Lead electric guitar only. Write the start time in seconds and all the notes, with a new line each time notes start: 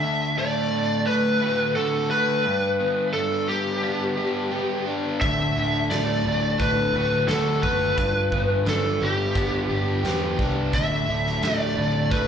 Already playing: E5
0.39 D5
1.07 B4
1.76 A4
2.11 B4
3.13 A4
3.48 G4
5.21 E5
5.91 D5
6.60 B4
7.28 A4
7.63 B4
8.69 A4
9.03 G4
10.75 E5
11.44 D5
12.11 B4